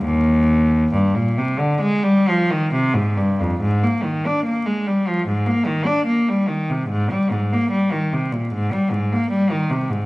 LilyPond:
\new Staff \with { instrumentName = "Cello" } { \clef bass \time 4/4 \key aes \lydian \tempo 4 = 73 ees,4 g,16 bes,16 c16 d16 aes16 g16 f16 ees16 c16 aes,16 g,16 f,16 | aes,16 bes16 ees16 d'16 bes16 aes16 g16 f16 aes,16 bes16 ees16 d'16 bes16 g16 ees16 c16 | aes,16 g16 aes,16 bes16 g16 ees16 c16 bes,16 aes,16 g16 aes,16 bes16 g16 ees16 c16 aes,16 | }